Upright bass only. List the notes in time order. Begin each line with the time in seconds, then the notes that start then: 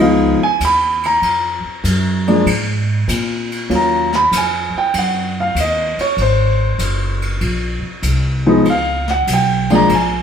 Already playing: C#2
0.40 muted upright bass stroke
0.60 D#2
1.22 F2
1.64 muted upright bass stroke
1.84 F#2
2.46 G#2
3.08 A#2
3.69 D#2
4.32 F2
4.74 muted upright bass stroke
4.94 F#2
5.55 D#2
5.98 muted upright bass stroke
6.17 G#1
6.79 F#1
7.41 A#1
7.83 muted upright bass stroke
8.02 C2
8.65 C#2
9.27 B1
9.89 A#1